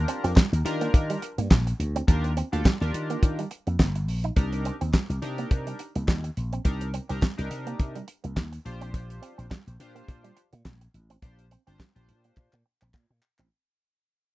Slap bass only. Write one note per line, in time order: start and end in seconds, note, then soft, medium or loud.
0.24 0.33 F2 loud
0.53 0.62 D#2 loud
0.65 0.86 D#3 loud
0.94 1.15 D#3 loud
1.38 1.48 G2 medium
1.51 1.72 A#1 medium
1.80 2.00 D2 medium
2.08 2.41 D#2 loud
2.53 2.62 D2 loud
2.81 2.90 D#2 loud
2.94 3.15 D#3 loud
3.23 3.43 D#3 loud
3.67 3.76 F2 loud
3.80 4.08 G1 loud
4.08 4.29 A#1 medium
4.37 4.69 C2 loud
4.81 4.91 D#2 medium
5.10 5.19 C2 loud
5.23 5.43 C3 loud
5.51 5.72 C3 loud
5.96 6.05 C2 loud
6.08 6.29 D#2 medium
6.37 6.58 A#1 loud
6.65 6.98 C2 loud
7.10 7.19 C2 medium
7.39 7.48 C2 loud
7.51 7.72 C3 loud
7.80 8.01 C3 loud
8.24 8.37 C2 medium
8.37 8.58 D#2 loud
8.65 9.19 A#1 loud
9.38 9.48 A#1 medium
9.67 9.76 A#1 loud
9.80 10.01 A#2 loud
10.08 10.29 A#2 loud
10.53 10.62 A#2 medium
10.65 10.86 A#1 medium
10.94 11.15 A1 medium
11.22 11.55 A#1 loud
11.67 11.76 G1 medium
11.96 12.10 A#1 loud
12.09 12.29 A#2 loud
12.37 12.49 A#2 loud
12.53 12.62 A#2 loud
12.82 12.91 A#1 medium
12.94 13.06 A#2 loud
13.10 13.19 A#2 medium
13.39 13.48 A1 loud